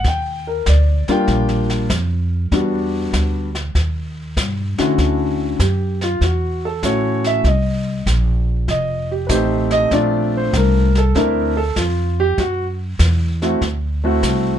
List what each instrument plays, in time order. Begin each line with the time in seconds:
0.04 upright bass D#2, grand piano G5, brush sweep, kick, snare
0.47 grand piano A#4
0.66 upright bass D2, grand piano D5, kick, snare, hi-hat pedal
1.08 grand piano G3 A#3 D4 F4 G5, muted upright bass stroke, snare
1.28 upright bass A#1, brush sweep, kick, snare
1.49 snare
1.70 snare
1.90 upright bass F2, kick, snare, hi-hat pedal
2.51 upright bass E2, grand piano G3 B3 D4 F#4, brush sweep, kick, snare
3.13 upright bass D2, kick, snare, hi-hat pedal
3.55 snare
3.75 upright bass D#2, brush sweep, kick, snare
4.37 upright bass G2, kick, snare, hi-hat pedal
4.78 grand piano D3 A3 C#4 E4 F#4, muted upright bass stroke, snare
4.98 upright bass D2, brush sweep, kick, snare
5.59 upright bass F#2, grand piano G4, kick, snare, hi-hat pedal
6.01 grand piano F4, snare
6.21 upright bass E2, grand piano F#4, brush sweep, kick, snare
6.65 grand piano A4
6.83 upright bass A1, grand piano A3 C#4 E4 F#4 C#5, kick, snare, hi-hat pedal
7.24 grand piano E5, snare
7.44 upright bass C2, grand piano D#5, brush sweep, kick, snare
8.06 upright bass A#1, kick, snare, hi-hat pedal
8.68 upright bass F1, grand piano D#5, brush sweep, kick, snare
9.11 grand piano G4
9.27 upright bass A1, grand piano A3 C4 D#4 G4 B4, kick, snare, hi-hat pedal
9.32 grand piano C5
9.71 grand piano D#5, snare
9.91 upright bass A#1, grand piano A3 C4 D4 F4 D5, brush sweep, kick, snare
10.37 grand piano C5
10.53 upright bass C2, grand piano A#4, kick, snare, hi-hat pedal
10.95 grand piano A4, snare
11.15 grand piano A3 C4 D4 E4 A#4, brush sweep, kick, snare
11.57 grand piano A4
11.76 upright bass F2, grand piano F4, kick, snare, hi-hat pedal
12.20 grand piano G4
12.38 upright bass F#2, grand piano F#4, brush sweep, kick, snare
12.99 upright bass E2, kick, snare, hi-hat pedal
13.42 grand piano A3 C4 E4 F#4, snare
13.61 upright bass D2, brush sweep, kick, snare
14.04 grand piano A3 C4 E4 F#4
14.23 upright bass C2, kick, snare, hi-hat pedal